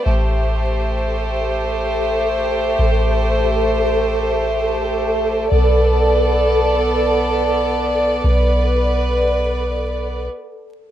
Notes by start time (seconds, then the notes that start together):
0.05 A1 A3 G4 A4 C5
2.79 A1
5.51 B1 B3 A4 D5
8.23 B1 B4